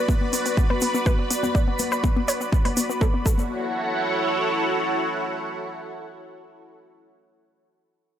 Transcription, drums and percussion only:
0.09 kick, shaker
0.21 high conga
0.33 open hi-hat, shaker
0.46 open hi-hat, shaker
0.57 kick, shaker
0.70 high conga
0.81 open hi-hat, shaker
0.94 shaker
1.06 kick, high conga, shaker
1.31 open hi-hat, shaker
1.43 high conga, shaker
1.55 kick, shaker
1.79 open hi-hat, high conga, shaker
1.92 shaker
2.04 kick, shaker
2.17 high conga
2.28 open hi-hat, shaker
2.41 shaker
2.52 kick, shaker
2.65 open hi-hat, high conga
2.77 open hi-hat, shaker
2.90 shaker
3.01 kick, high conga, shaker
3.26 kick, shaker
3.38 high conga, shaker

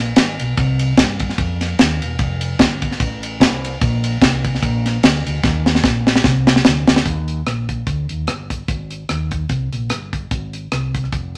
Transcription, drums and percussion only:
0.16 snare, ride
0.39 ride
0.57 kick, ride
0.79 ride
0.97 kick, snare, ride
1.19 kick, ride
1.30 snare
1.38 kick, ride
1.61 snare, ride
1.79 snare, ride
2.02 ride
2.19 kick, ride
2.41 ride
2.59 kick, snare, ride
2.82 kick, ride
2.91 snare
3.00 kick, ride
3.23 ride
3.41 snare, ride
3.65 ride
3.81 kick, ride
4.04 ride
4.22 kick, snare, ride
4.44 kick, ride
4.55 snare
4.63 kick, ride
4.86 snare, ride
5.03 snare, ride
5.26 ride
5.43 kick, snare
5.66 snare
5.75 snare
5.84 kick, snare
6.07 snare
6.16 snare
6.24 kick, snare
6.47 snare
6.56 snare
6.65 snare
6.87 snare
6.96 snare
7.06 kick, closed hi-hat
7.28 closed hi-hat
7.46 cross-stick, closed hi-hat
7.69 kick, closed hi-hat
7.87 kick, closed hi-hat
8.09 closed hi-hat
8.27 cross-stick, closed hi-hat
8.50 kick, closed hi-hat
8.68 kick, closed hi-hat
8.91 closed hi-hat
9.09 cross-stick, closed hi-hat
9.31 kick, closed hi-hat
9.49 kick, closed hi-hat
9.73 cross-stick, closed hi-hat
9.90 cross-stick, closed hi-hat
10.13 kick, closed hi-hat
10.31 kick, closed hi-hat
10.53 closed hi-hat
10.72 cross-stick, closed hi-hat
10.95 kick, closed hi-hat
11.04 cross-stick
11.12 kick, closed hi-hat

